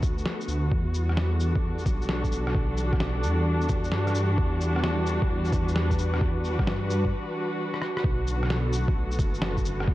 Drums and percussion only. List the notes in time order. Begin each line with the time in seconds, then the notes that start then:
0.03 kick, shaker
0.18 shaker
0.26 snare
0.41 shaker
0.48 shaker
0.72 kick
0.94 shaker
1.09 cross-stick
1.17 snare
1.40 shaker
1.55 kick
1.79 shaker
1.86 kick, shaker
2.02 shaker
2.09 snare
2.24 kick, shaker
2.32 shaker
2.47 cross-stick
2.55 kick
2.77 shaker
2.93 kick, cross-stick
3.00 snare
3.23 shaker
3.61 shaker
3.69 kick, shaker
3.84 shaker
3.92 snare
4.07 cross-stick, shaker
4.15 shaker
4.38 kick
4.61 shaker
4.76 cross-stick
4.84 snare
5.06 shaker
5.22 kick
5.45 shaker
5.52 kick, shaker
5.68 shaker
5.76 snare
5.91 kick, shaker
5.99 shaker
6.14 cross-stick
6.21 kick
6.44 shaker
6.59 kick, cross-stick
6.67 snare
6.90 shaker
7.05 kick
7.74 cross-stick
7.82 cross-stick
7.97 cross-stick
8.04 kick
8.27 shaker
8.43 cross-stick
8.50 snare
8.73 shaker
8.88 kick
9.12 shaker
9.19 kick, shaker
9.34 shaker
9.42 snare
9.57 kick, shaker
9.65 shaker
9.80 cross-stick
9.88 kick